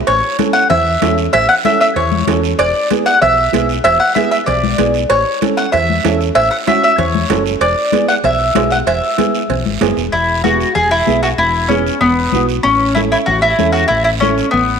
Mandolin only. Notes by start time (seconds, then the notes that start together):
0.07 C#5
0.53 F#5
0.70 E5
1.33 E5
1.49 F#5
1.65 E5
1.81 E5
1.96 C#5
2.59 D5
3.06 F#5
3.22 E5
3.84 E5
4.00 F#5
4.15 E5
4.31 E5
4.46 D5
5.10 C#5
5.57 F#5
5.72 E5
6.35 E5
6.51 F#5
6.68 E5
6.84 E5
6.98 C#5
7.61 D5
8.08 F#5
8.25 E5
8.72 F#5
8.87 E5
10.12 E4
10.44 F#4
10.75 G#4
10.91 E4
11.23 F#4
11.38 E4
11.68 C#4
12.01 B3
12.63 C#4
12.95 E4
13.12 E4
13.26 F#4
13.42 E4
13.72 F#4
13.88 E4
14.04 E4
14.20 C#4
14.51 B3